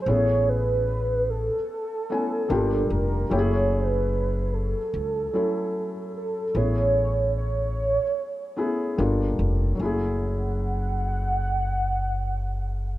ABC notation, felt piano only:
X:1
M:4/4
L:1/8
Q:"Swing 16ths" 1/4=74
K:F#m
V:1 name="Felt piano"
[A,B,CEG]4 z [A,B,CEg] [=G,_B,D=F=G]2 | [F,A,CE=G^G]4 z [F,A,CEA]3 | [A,B,CEG]4 z [A,B,CEG] [=G,_B,D=FA]2 | [F,A,CEG]8 |]